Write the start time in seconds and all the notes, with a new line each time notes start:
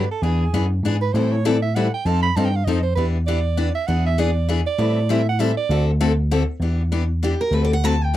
Already playing: B4
0.11 A4
0.22 E2 E3 B3 D4 G#4
0.53 F#2 E3 B3 D4 G#4
0.83 G#2 E3 B3 D4 G#4
1.01 B4
1.13 A2 E3 G3 C4 E4 A4 C5
1.32 C#5
1.45 E3 G3 C4 E4 A4 D5
1.62 E5
1.75 E3 G3 C4 E4 A4 F#5
1.94 G5
2.05 F2 F3 C4 D#4 A4 A5
2.23 B5
2.36 G2 F3 C4 D#4 A4 A5
2.45 G5
2.56 F5
2.65 F2 F3 C4 D#4 A4 D#5
2.83 C5
2.95 E2 E3 B3 D4 G4 B4
3.27 E3 B3 D4 G4 D5
3.57 E3 B3 D4 G4
3.75 E5
3.87 E2 E3 B3 D4 G#4 F#5
4.06 E5
4.18 E3 B3 D4 G#4 D5
4.49 E3 B3 D4 G#4
4.67 D5
4.78 A2 E3 G3 C4 E4 A4
5.09 E3 G3 C4 E4 A4 E5
5.29 F#5
5.39 E3 G3 C4 E4 A4 E5
5.57 D5
5.69 D2 D3 A3 C4 F#4 A4
6.00 D3 A3 C4 F#4 A4
6.31 D3 A3 C4 F#4 A4
6.60 E2 E3 B3 D4 G4
6.92 E3 B3 D4 G4
7.23 E3 B3 D4 G4
7.41 A#4
7.52 D2 D3 A3 C4 F#4 A4 B4
7.64 D5
7.73 F#5
7.84 D3 A3 C4 F#4 A4 A5
8.04 G5
8.14 D3